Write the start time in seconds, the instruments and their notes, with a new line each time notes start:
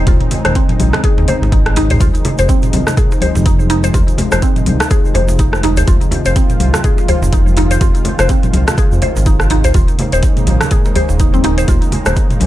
Already playing: analog synth pad C#3 D#3 G#3 C4 D#4
0.07 analog synth bass D#1, synth pluck F4, kick, closed hi-hat, muted conga, djembe tone, high conga, low conga, djembe bass
0.21 closed hi-hat, mid tom
0.31 open hi-hat, djembe tone, low conga
0.45 analog synth bass D#1, synth pluck C5, cross-stick, closed hi-hat, muted conga
0.55 synth pluck C4, kick, closed hi-hat, djembe tone
0.69 closed hi-hat, mid tom, muted conga, high conga
0.80 analog synth bass A#1, open hi-hat, high conga, djembe tone
0.93 cross-stick, muted conga, djembe slap, high conga, low conga
1.04 synth pluck G#4, kick, closed hi-hat, djembe tone
1.17 analog synth bass D#2, djembe slap
1.28 synth pluck C5, open hi-hat, muted conga, djembe tone, low conga
1.42 analog synth bass G#1, djembe slap
1.52 synth pluck D#4, kick, closed hi-hat, high tom, muted conga, djembe tone
1.66 cross-stick, closed hi-hat, high tom
1.76 synth pluck D#4, open hi-hat, muted conga, djembe slap, djembe tone
1.90 synth pluck C5, closed hi-hat, mid tom, djembe bass
2.00 analog synth bass F1, analog synth pad C3 D#3 F3, synth pluck F4, kick, closed hi-hat, muted conga, high conga, djembe tone, djembe bass, shaker
2.14 closed hi-hat, shaker
2.25 open hi-hat, djembe tone, low conga
2.38 analog synth bass F1, synth pluck C5, closed hi-hat, muted conga, shaker
2.49 synth pluck C4, kick, closed hi-hat, djembe tone, shaker
2.63 closed hi-hat, mid tom, muted conga, shaker
2.73 analog synth bass C2, open hi-hat, djembe tone, high conga
2.87 cross-stick, muted conga, djembe slap, high conga, low conga, shaker
2.97 synth pluck G#4, kick, closed hi-hat, mid tom, djembe tone, shaker
3.11 djembe slap, shaker
3.20 synth pluck C5, open hi-hat, muted conga, high conga, djembe tone, djembe bass
3.35 analog synth bass F1, djembe slap, shaker
3.46 synth pluck D#4, kick, closed hi-hat, muted conga, djembe tone, shaker
3.59 high conga, shaker
3.70 synth pluck D#4, open hi-hat, djembe slap, muted conga, djembe tone
3.84 synth pluck C5, closed hi-hat, shaker
3.94 analog synth bass F1, synth pluck F4, kick, closed hi-hat, muted conga, djembe tone, high conga, djembe bass, shaker
4.08 closed hi-hat, shaker
4.18 open hi-hat, djembe tone, low conga
4.32 analog synth bass F1, synth pluck C5, cross-stick, closed hi-hat, shaker
4.42 synth pluck C4, kick, closed hi-hat, djembe tone, shaker
4.56 closed hi-hat, mid tom, muted conga, high conga, shaker
4.66 analog synth bass C2, open hi-hat, djembe tone, high conga
4.80 cross-stick, djembe slap, muted conga, shaker
4.91 synth pluck G#4, kick, closed hi-hat, djembe tone, shaker
5.05 shaker
5.14 analog synth bass F1, synth pluck C5, open hi-hat, muted conga, djembe tone, low conga
5.28 djembe slap, shaker
5.39 synth pluck D#4, kick, closed hi-hat, muted conga, djembe tone, shaker
5.53 cross-stick, shaker
5.63 analog synth bass F1, synth pluck D#4, open hi-hat, muted conga, djembe slap, djembe tone
5.77 synth pluck C5, closed hi-hat, djembe bass, shaker
5.87 analog synth bass F1, analog synth pad F4, synth pluck F4, kick, closed hi-hat, muted conga, high conga, djembe tone, djembe bass, shaker
6.01 closed hi-hat, shaker
6.11 open hi-hat, djembe tone, low conga
6.25 analog synth bass F1, synth pluck C5, closed hi-hat, muted conga, shaker
6.36 synth pluck C4, kick, closed hi-hat, djembe tone, shaker
6.50 closed hi-hat, mid tom, muted conga, shaker
6.60 analog synth bass C2, open hi-hat, high conga, djembe tone
6.74 cross-stick, djembe slap, muted conga, high conga, low conga, shaker
6.84 synth pluck G#4, kick, closed hi-hat, mid tom, djembe tone, shaker
6.98 djembe slap, shaker
7.08 synth pluck C5, open hi-hat, muted conga, high conga, djembe tone, djembe bass
7.22 analog synth bass F1, djembe slap, shaker
7.33 synth pluck D#4, kick, closed hi-hat, muted conga, djembe tone, shaker
7.46 high conga, shaker
7.57 synth pluck D#4, open hi-hat, muted conga, djembe slap, djembe tone
7.71 synth pluck C5, closed hi-hat, shaker
7.81 analog synth bass F1, synth pluck F4, kick, closed hi-hat, muted conga, high conga, djembe tone, djembe bass, shaker
7.95 closed hi-hat, shaker
8.05 open hi-hat, djembe tone, low conga
8.19 analog synth bass F1, synth pluck C5, cross-stick, closed hi-hat, muted conga, shaker
8.29 synth pluck C4, kick, closed hi-hat, djembe tone, shaker
8.43 closed hi-hat, mid tom, muted conga, high conga, shaker
8.53 analog synth bass C2, open hi-hat, high conga, djembe tone
8.67 cross-stick, closed hi-hat, muted conga, djembe slap, low conga, shaker
8.78 synth pluck G#4, kick, closed hi-hat, djembe tone, shaker
8.92 analog synth bass F2, shaker
9.02 synth pluck C5, open hi-hat, muted conga, djembe tone, low conga
9.16 analog synth bass G#1, djembe slap, shaker
9.26 synth pluck D#4, kick, closed hi-hat, muted conga, djembe tone, shaker
9.40 cross-stick, shaker
9.50 synth pluck D#4, open hi-hat, djembe slap, muted conga, djembe tone
9.64 synth pluck C5, closed hi-hat, djembe bass, shaker
9.74 analog synth bass D#1, analog synth pad C#3 G#3 A#3 D#4, synth pluck F4, kick, closed hi-hat, muted conga, high conga, djembe tone, djembe bass, shaker
9.88 closed hi-hat, shaker
9.99 open hi-hat, djembe tone, low conga
10.12 analog synth bass D#1, synth pluck C5, closed hi-hat, muted conga, shaker
10.23 kick, closed hi-hat, djembe tone, shaker
10.37 closed hi-hat, mid tom, muted conga, shaker
10.47 analog synth bass A#1, open hi-hat, djembe tone, high conga
10.61 cross-stick, muted conga, djembe slap, high conga, low conga, shaker
10.71 synth pluck G#4, kick, closed hi-hat, mid tom, djembe tone, shaker
10.85 djembe slap, shaker
10.95 synth pluck C5, open hi-hat, muted conga, high conga, djembe tone, djembe bass
11.09 analog synth bass D#1, djembe slap, shaker
11.20 synth pluck D#4, kick, closed hi-hat, muted conga, djembe tone, shaker
11.34 synth pluck C4, high conga, shaker
11.44 synth pluck D#4, open hi-hat, djembe slap, muted conga, djembe tone
11.58 synth pluck C5, closed hi-hat, shaker
11.68 analog synth bass D#1, synth pluck F4, kick, closed hi-hat, muted conga, high conga, djembe tone, djembe bass, shaker
11.82 closed hi-hat, shaker
11.92 open hi-hat, djembe tone, low conga
12.06 analog synth bass D#1, synth pluck C5, cross-stick, closed hi-hat, muted conga, shaker
12.16 kick, closed hi-hat, djembe tone, shaker
12.30 closed hi-hat, mid tom, muted conga, high conga, shaker
12.40 analog synth bass A#1, open hi-hat, djembe tone, high conga